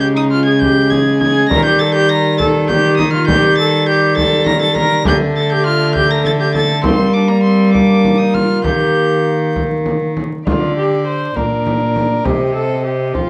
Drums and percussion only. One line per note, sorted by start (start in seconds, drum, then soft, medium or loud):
0.61 frame drum medium
0.91 frame drum medium
1.21 frame drum medium
1.51 frame drum medium
2.40 frame drum medium
2.69 frame drum medium
2.99 frame drum medium
3.28 frame drum medium
4.18 frame drum medium
4.46 frame drum medium
4.76 frame drum medium
5.05 frame drum medium
5.95 frame drum medium
6.25 frame drum medium
6.55 frame drum medium
6.84 frame drum medium
7.75 frame drum soft
8.05 frame drum medium
8.35 frame drum medium
8.64 frame drum medium
9.56 frame drum medium
9.86 frame drum medium
10.17 frame drum medium
10.47 frame drum medium
11.37 frame drum medium
11.67 frame drum medium
11.96 frame drum medium
12.25 frame drum medium
13.15 frame drum medium